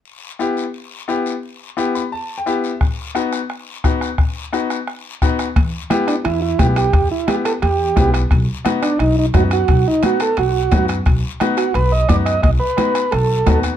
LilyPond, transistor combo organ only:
\new Staff \with { instrumentName = "Transistor combo organ" } { \time 4/4 \key e \minor \tempo 4 = 174 r1 | r1 | r1 | r1 |
r4. d'8 e'8 e'8 g'8 g'8~ | g'8 e'8 g'8 a'8 g'4. r8 | r4. d'8 dis'8 dis'8 fis'8 fis'8~ | fis'8 dis'8 fis'8 a'8 fis'4. r8 |
r4. fis'8 b'8 dis''8 d''8 dis''8 | dis''8 b'4. a'4. r8 | }